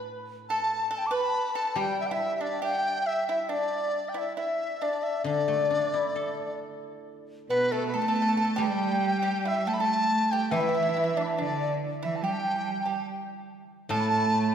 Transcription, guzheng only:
0.00 0.90 A2 soft
1.75 4.37 G3 medium
5.24 7.94 D3 soft
5.48 7.28 A3 soft
5.70 7.50 D4 soft
5.94 7.72 E4 soft
6.16 7.94 A4 soft
8.58 11.17 G3 medium
10.51 13.06 E3 medium
13.89 14.55 A2 medium

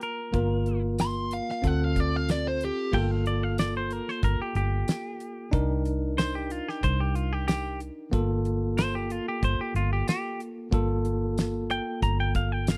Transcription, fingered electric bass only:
0.33 1.39 G1 medium
1.63 2.69 D2 medium
2.93 3.99 G1 loud
4.23 4.37 G1 medium
4.39 muted fingered electric bass stroke soft
4.55 4.82 G1 medium
5.53 6.59 C2 loud
6.83 7.89 C2 loud
8.13 9.19 G1 loud
9.43 9.56 G1 medium
9.74 10.01 G1 medium
10.72 11.78 G1 medium
12.02 12.78 G1 loud

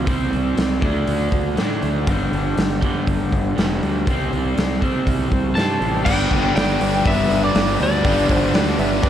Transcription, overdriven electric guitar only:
0.06 0.80 C3 medium
0.06 0.81 G3 medium
0.06 0.82 C4 loud
0.81 1.55 D3 medium
0.81 1.56 A3 medium
0.81 1.57 D4 medium
1.56 2.05 D3 medium
1.56 2.06 A3 medium
1.56 2.07 D4 medium
2.06 2.80 G2 medium
2.06 2.81 D3 medium
2.06 2.81 G3 medium
2.82 3.55 G2 medium
2.82 3.56 D3 medium
2.82 3.60 G3 medium
3.56 4.05 G2 medium
3.56 4.06 D3 medium
3.60 4.08 G3 medium
4.06 4.80 C3 medium
4.06 4.81 G3 medium
4.10 4.80 C4 medium
4.81 5.56 G3 medium
4.81 5.55 C4 medium
4.86 5.55 C3 medium
5.56 6.05 C3 medium
5.56 6.05 G3 medium
5.56 6.06 C4 medium
6.05 8.03 G2 medium
6.05 8.04 D3 loud
6.05 8.05 G3 loud
8.05 9.09 G2 medium
8.05 9.09 D3 loud
8.05 9.09 G3 loud

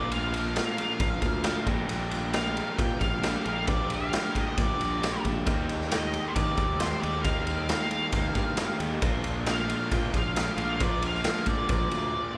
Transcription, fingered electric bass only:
0.00 0.59 A#1 medium
1.00 1.17 A#1 medium
1.22 1.57 D2 medium
1.67 1.84 A#1 medium
1.89 2.60 A#1 medium
2.79 2.96 A#2 medium
3.01 3.36 A#1 medium
3.46 4.16 A#1 medium
4.58 4.75 A#1 medium
4.80 5.15 A#1 medium
5.24 5.42 A#1 medium
5.47 6.17 D#2 medium
6.36 6.53 D#3 medium
6.58 6.93 D#2 medium
7.03 7.73 D#2 medium
8.12 8.30 D#2 medium
8.36 8.71 G2 loud
8.80 8.97 D#2 medium
9.02 9.72 A#1 medium
9.92 10.09 A#2 medium
10.14 10.49 A#1 medium
10.57 11.28 A#1 loud
11.70 11.87 A#1 loud
11.91 12.09 D2 loud

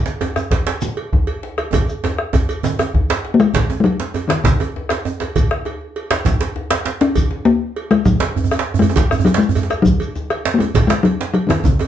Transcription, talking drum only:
3.34 3.41 A#3 medium
3.40 3.79 G#3 loud
3.80 4.28 F#3 loud
3.80 3.85 G#3 medium
4.28 4.43 D#3 medium
4.28 4.30 F#3 medium
4.44 5.16 C#3 medium
7.01 7.47 C#4 loud
7.45 7.92 A#3 loud
7.91 8.07 G#3 loud
8.05 8.79 F#3 loud
8.79 9.22 G#3 medium
9.25 9.40 F#3 medium
9.38 9.84 G#3 loud
9.82 10.44 F#3 medium
10.54 10.60 A#3 medium
10.59 10.87 G#3 medium
10.87 11.05 G#3 medium
11.03 11.33 F#3 medium
11.34 11.47 F#3 medium
11.47 11.66 D#3 medium
11.47 11.50 F#3 medium
11.65 11.88 C#3 medium

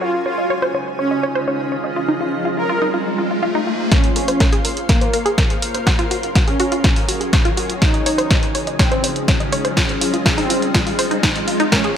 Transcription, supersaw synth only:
0.01 0.18 F4 loud
0.26 0.51 F4 medium
0.99 1.24 C#4 medium
2.58 2.83 A#4 loud
3.92 4.08 C#4 loud
4.16 4.41 C#4 medium
4.89 5.14 A#3 loud
6.48 6.73 C#4 loud
7.82 7.99 D#4 loud
8.06 8.31 D#4 loud
8.79 9.04 C4 loud
10.38 10.63 C4 loud
11.72 11.89 C#4 loud

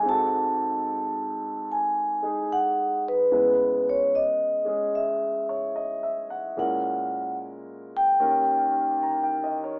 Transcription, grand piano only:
0.00 3.28 G#2 medium
0.00 2.21 G#3 soft
0.05 3.31 C4 medium
0.05 3.32 F#4 soft
0.11 3.33 A4 medium
2.22 3.30 G#3 soft
2.22 3.31 D#4 soft
2.22 3.31 G#4 soft
3.31 6.57 C#3 soft
3.31 4.63 G#3 soft
3.31 6.57 B3 soft
3.31 6.56 E4 soft
3.31 6.58 B4 soft
4.65 6.56 G#3 soft
4.65 6.56 C#4 soft
4.65 6.57 G#4 soft
5.49 5.91 C#5 soft
5.76 6.27 D#5 medium
6.03 6.45 E5 soft
6.30 6.72 F#5 medium
6.57 8.20 A#2 soft
6.57 8.20 G#3 soft
6.57 8.19 C#4 soft
6.57 8.21 E4 soft
6.57 8.20 A#4 soft
8.20 9.79 D#2 medium
8.20 9.79 D#3 medium
8.20 9.79 C#4 soft
8.20 9.79 G4 soft
8.20 9.79 A#4 medium
9.03 9.41 A#5 soft
9.23 9.58 G5 soft
9.44 9.68 D#5 soft
9.64 9.79 C#5 soft

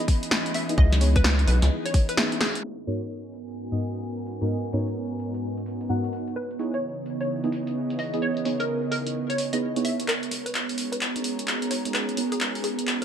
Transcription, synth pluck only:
0.55 0.70 E5 medium
0.78 0.98 D#5 medium
1.16 1.34 B4 loud
1.48 1.68 B4 medium
1.86 1.95 C#5 medium
2.09 2.27 B4 medium
2.41 2.56 G#4 medium
6.36 6.56 B4 loud
6.74 6.99 C#5 loud
7.21 7.45 C#5 medium
7.99 8.14 D#5 medium
8.22 8.42 C#5 medium
8.60 8.78 A#4 medium
8.91 9.12 A#4 loud
9.30 9.40 C#5 medium
9.53 9.71 D#5 medium
9.85 10.00 E5 medium
10.08 10.28 A#4 medium
10.46 10.71 B4 loud
10.92 11.17 B4 medium
11.71 11.86 C#5 medium
11.94 12.14 B4 medium
12.32 12.50 G#4 loud
12.64 12.84 G#4 medium

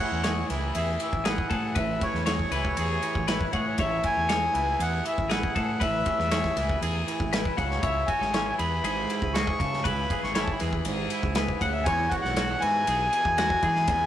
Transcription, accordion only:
0.00 0.46 F#5 medium
0.75 1.00 E5 medium
1.02 1.25 E5 medium
1.26 1.78 F#5 medium
1.77 2.03 E5 medium
2.02 3.52 C#5 medium
3.53 3.66 C#5 medium
3.68 3.80 C#5 medium
3.80 4.05 E5 loud
4.05 4.82 G#5 loud
4.82 5.04 F#5 medium
5.07 5.30 E5 loud
5.30 5.82 F#5 medium
5.82 6.78 E5 loud
7.60 7.69 C#5 medium
7.71 7.82 C#5 medium
7.82 8.08 E5 medium
8.06 8.54 G#5 medium
8.59 9.37 B5 loud
9.34 9.86 C#6 loud
9.84 10.21 B5 loud
10.24 10.33 C#6 medium
10.34 10.43 B5 medium
10.42 10.51 A5 medium
10.52 10.61 B5 medium
11.60 11.73 F#5 medium
11.73 11.85 E5 medium
11.84 12.11 G#5 loud
12.09 12.15 F#5 loud
12.22 12.62 F#5 loud
12.60 14.06 G#5 loud

